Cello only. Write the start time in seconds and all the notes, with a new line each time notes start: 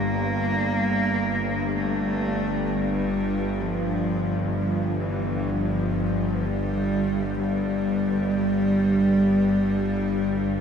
Already playing: A#3
1.76 A3
2.66 G3 A3
3.61 F3
4.57 F3
5.01 E3
5.50 F3
6.46 G3
7.40 G3